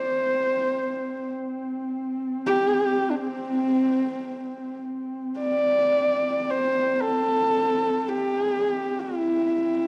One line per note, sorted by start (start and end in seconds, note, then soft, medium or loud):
0.00 0.25 C4 medium
0.00 1.32 C5 medium
0.25 4.91 C4 medium
2.47 3.12 G4 medium
3.10 3.17 D4 medium
3.16 4.78 C4 medium
4.92 9.55 C4 medium
5.40 6.52 D5 medium
6.50 6.96 C5 medium
6.96 7.03 C5 medium
7.01 8.10 A4 medium
8.09 9.02 G4 medium
9.01 9.87 E4 medium
9.56 9.87 C4 medium